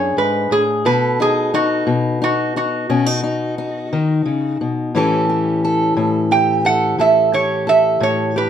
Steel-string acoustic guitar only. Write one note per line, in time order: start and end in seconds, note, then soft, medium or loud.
0.00 0.16 F#2 medium
0.00 0.82 D4 medium
0.00 0.82 G#4 medium
0.17 0.51 G#2 medium
0.51 0.85 A2 medium
0.85 1.86 B2 medium
0.85 4.90 A4 medium
1.20 1.53 D#4 medium
1.54 2.20 D#4 medium
1.87 2.88 B2 medium
2.22 2.55 D#4 medium
2.56 2.89 D#4 medium
2.89 3.92 B2 medium
2.89 3.06 C#4 medium
3.06 3.22 D#4 medium
3.24 3.57 D#4 medium
3.58 4.90 D#4 medium
3.93 4.25 D#3 medium
4.26 4.60 C#3 medium
4.61 4.95 B2 medium
4.95 5.95 A2 medium
4.95 8.50 E3 medium
4.95 8.50 C#4 medium
4.95 5.28 G4 medium
4.95 5.63 A4 medium
5.29 6.30 G4 medium
5.65 6.64 A4 medium
5.97 6.97 A2 medium
6.31 7.32 G4 medium
6.65 6.98 A4 medium
6.98 7.99 A2 medium
6.98 7.66 A4 medium
7.34 8.35 G4 medium
7.67 8.50 A4 medium
8.00 8.50 A2 medium
8.36 8.50 G4 medium